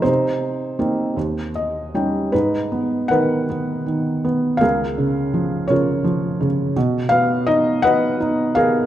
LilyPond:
<<
  \new Staff \with { instrumentName = "Felt piano" } { \time 6/8 \key ees \major \tempo 4. = 54 << { c''2 ees''8 g''8 | \key gis \dorian b'4 fis''2 | eis''4. cis''4 r8 | r8 eis''8 dis''8 fis''4 eis''8 | } \\ { ees'2 r4 | dis'4 <ais' b'>2 | <gis' ais'>4. <eis' ais'>4. | r4. <b' dis''>4 <gis' ais'>8 | } >> }
  \new Staff \with { instrumentName = "Felt piano" } { \clef bass \time 6/8 \key ees \major c4 <bes c' ees'>8 ees,4 <g des' ees'>8 | \key gis \dorian gis,8 b8 dis8 b8 dis8 b8 | cis,8 cis8 eis8 cis8 eis8 cis8 | b,8 b8 dis'8 b8 dis'8 b8 | }
>>